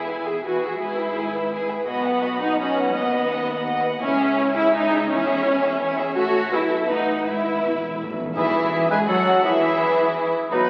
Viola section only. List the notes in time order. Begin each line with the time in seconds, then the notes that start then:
Already playing: E4
0.27 G#4
0.45 F#4
0.81 E4
1.89 B3
2.42 D#4
2.60 C#4
2.97 B3
4.03 C#4
4.56 E4
4.74 D#4
5.10 C#4
6.17 F#4
6.53 E4
6.89 D#4
7.26 E4
8.37 E3
8.91 G#3
9.09 F#3
9.45 E3
10.52 F#3 B3